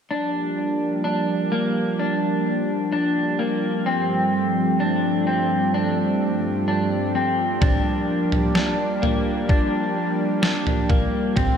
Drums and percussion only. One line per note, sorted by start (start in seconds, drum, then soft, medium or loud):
7.62 kick medium
7.62 floor tom medium
8.32 floor tom medium
8.55 snare medium
9.03 floor tom medium
9.49 kick medium
10.43 snare loud
10.67 floor tom medium
10.90 kick medium
10.90 floor tom medium
11.37 kick loud
11.37 floor tom medium